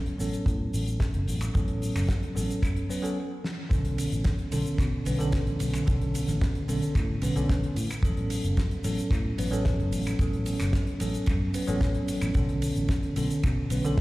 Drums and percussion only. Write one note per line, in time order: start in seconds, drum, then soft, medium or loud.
0.06 closed hi-hat medium
0.20 open hi-hat loud
0.20 shaker medium
0.33 closed hi-hat medium
0.33 shaker medium
0.46 kick loud
0.46 closed hi-hat medium
0.46 shaker medium
0.73 open hi-hat loud
0.73 shaker medium
0.86 closed hi-hat medium
0.86 shaker medium
1.00 kick loud
1.00 snare loud
1.00 closed hi-hat medium
1.00 shaker soft
1.14 closed hi-hat medium
1.28 open hi-hat loud
1.28 shaker medium
1.41 finger snap medium
1.41 closed hi-hat medium
1.41 shaker medium
1.55 kick loud
1.55 closed hi-hat medium
1.55 shaker medium
1.68 closed hi-hat medium
1.82 open hi-hat medium
1.82 shaker medium
1.96 finger snap medium
1.96 snare soft
1.96 open hi-hat medium
1.96 shaker medium
2.09 kick loud
2.09 snare loud
2.09 closed hi-hat medium
2.09 shaker medium
2.23 closed hi-hat medium
2.37 open hi-hat loud
2.37 shaker medium
2.51 closed hi-hat medium
2.51 shaker medium
2.62 finger snap medium
2.62 kick loud
2.62 closed hi-hat medium
2.62 shaker medium
2.76 closed hi-hat medium
2.90 open hi-hat loud
2.90 shaker medium
3.04 closed hi-hat medium
3.04 shaker medium
3.44 snare medium
3.71 kick loud
3.71 closed hi-hat medium
3.71 ride medium
3.71 shaker medium
3.85 closed hi-hat medium
3.98 open hi-hat loud
3.98 ride medium
3.98 shaker medium
4.12 closed hi-hat soft
4.12 shaker medium
4.24 kick loud
4.24 snare loud
4.24 closed hi-hat medium
4.24 ride medium
4.24 shaker medium
4.38 closed hi-hat soft
4.52 open hi-hat loud
4.52 ride medium
4.52 shaker medium
4.65 closed hi-hat medium
4.65 shaker medium
4.78 finger snap medium
4.78 kick loud
4.78 closed hi-hat medium
4.78 ride medium
4.78 shaker medium
5.05 open hi-hat loud
5.05 ride medium
5.05 shaker medium
5.20 closed hi-hat medium
5.20 shaker medium
5.32 kick loud
5.32 snare loud
5.32 closed hi-hat medium
5.32 ride medium
5.32 shaker soft
5.47 closed hi-hat medium
5.59 open hi-hat loud
5.59 ride medium
5.59 shaker medium
5.74 finger snap medium
5.74 closed hi-hat soft
5.74 shaker medium
5.87 kick loud
5.87 closed hi-hat medium
5.87 ride medium
5.87 shaker medium
6.01 closed hi-hat medium
6.14 open hi-hat loud
6.14 ride medium
6.14 shaker medium
6.27 snare soft
6.27 closed hi-hat medium
6.27 shaker medium
6.41 kick loud
6.41 snare loud
6.41 closed hi-hat medium
6.41 ride medium
6.41 shaker soft
6.55 closed hi-hat soft
6.68 open hi-hat loud
6.68 ride medium
6.68 shaker medium
6.82 closed hi-hat medium
6.82 shaker medium
6.95 finger snap medium
6.95 kick loud
6.95 closed hi-hat medium
6.95 ride medium
6.95 shaker medium
7.22 open hi-hat loud
7.22 ride medium
7.22 shaker medium
7.36 closed hi-hat medium
7.36 shaker medium
7.49 kick loud
7.49 snare loud
7.49 closed hi-hat loud
7.49 ride medium
7.49 shaker soft
7.63 closed hi-hat medium
7.76 open hi-hat loud
7.76 ride medium
7.76 shaker medium
7.90 finger snap medium
7.90 closed hi-hat medium
7.90 shaker medium
8.03 kick loud
8.03 closed hi-hat medium
8.03 ride medium
8.03 shaker medium
8.17 closed hi-hat medium
8.30 open hi-hat loud
8.30 ride medium
8.30 shaker medium
8.44 closed hi-hat medium
8.44 shaker medium
8.57 kick loud
8.57 snare loud
8.57 closed hi-hat loud
8.57 ride medium
8.57 shaker soft
8.71 closed hi-hat medium
8.84 open hi-hat loud
8.84 ride medium
8.84 shaker medium
8.98 closed hi-hat medium
8.98 shaker medium
9.11 finger snap medium
9.11 kick loud
9.11 closed hi-hat medium
9.11 ride medium
9.11 shaker soft
9.38 open hi-hat loud
9.38 ride medium
9.38 shaker medium
9.52 closed hi-hat medium
9.52 shaker medium
9.65 kick loud
9.65 snare loud
9.65 closed hi-hat medium
9.65 ride medium
9.65 shaker soft
9.80 closed hi-hat medium
9.92 open hi-hat loud
9.92 ride medium
9.92 shaker medium
10.06 finger snap medium
10.06 closed hi-hat medium
10.06 shaker medium
10.19 kick loud
10.19 closed hi-hat medium
10.19 ride medium
10.19 shaker medium
10.33 closed hi-hat medium
10.46 open hi-hat loud
10.46 ride medium
10.46 shaker medium
10.59 finger snap medium
10.59 snare soft
10.59 closed hi-hat medium
10.59 shaker medium
10.73 kick loud
10.73 snare loud
10.73 closed hi-hat medium
10.73 ride medium
10.73 shaker soft
10.87 closed hi-hat soft
11.00 open hi-hat loud
11.00 ride medium
11.00 shaker medium
11.14 closed hi-hat medium
11.14 shaker medium
11.26 finger snap medium
11.26 kick loud
11.26 closed hi-hat medium
11.26 ride medium
11.26 shaker soft
11.54 open hi-hat loud
11.54 ride medium
11.54 shaker medium
11.68 closed hi-hat medium
11.68 shaker medium
11.81 kick loud
11.81 snare loud
11.81 closed hi-hat medium
11.81 ride medium
11.81 shaker soft
11.94 closed hi-hat medium
12.08 open hi-hat loud
12.08 ride medium
12.08 shaker medium
12.21 finger snap medium
12.21 closed hi-hat medium
12.21 shaker medium
12.34 kick loud
12.34 closed hi-hat medium
12.34 ride medium
12.34 shaker soft
12.49 closed hi-hat medium
12.62 open hi-hat loud
12.62 ride medium
12.62 shaker medium
12.76 closed hi-hat medium
12.76 shaker medium
12.88 kick loud
12.88 snare loud
12.88 closed hi-hat medium
12.88 ride medium
12.88 shaker medium
13.03 closed hi-hat soft
13.16 open hi-hat loud
13.16 ride medium
13.16 shaker medium
13.30 closed hi-hat medium
13.30 shaker medium
13.43 finger snap medium
13.43 kick loud
13.43 closed hi-hat medium
13.43 ride medium
13.43 shaker medium
13.70 open hi-hat loud
13.70 ride medium
13.70 shaker medium
13.84 closed hi-hat medium
13.84 shaker medium
13.98 kick loud
13.98 snare loud
13.98 closed hi-hat medium
13.98 ride medium